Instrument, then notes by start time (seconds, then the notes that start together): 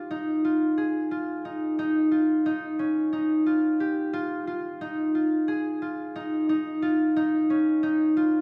harp
Already playing: C#4 D#4 F4 G4
0.11 D#4
0.45 F4
0.78 G#4
1.11 F4
1.45 D#4
1.79 D#4
2.11 F4
2.46 D#4
2.79 C#4
3.13 D#4
3.46 F4
3.80 G4
4.13 F4
4.47 F4
4.81 D#4
5.15 F4
5.48 G#4
5.82 F4
6.16 D#4
6.49 D#4
6.82 F4
7.16 D#4
7.50 C#4
7.83 D#4
8.17 F4